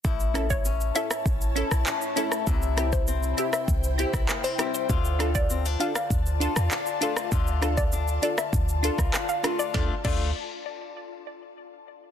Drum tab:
CC |----------------|----------------|----------------|----------------|
HH |--x---x---x---x-|--x---x---x---x-|--x---x---x---x-|--x---x---x---x-|
SH |xxxxxxxxxxxxxxxx|xxxxxxxxxxxxxxxx|xxxxxxxxxxxxxxxx|xxxxxxxxxxxxxxxx|
CP |------------x---|------------x---|------------x---|------------x---|
SD |--r----r---r---r|--r----r---rr-r-|--r----r---r---r|--r----r---rr-r-|
BD |o--o----o-------|o--o----o--o----|o--o----o-------|o--o----o--o----|

CC |--x-------------|
HH |----------------|
SH |----------------|
CP |----------------|
SD |o---------------|
BD |o-o-------------|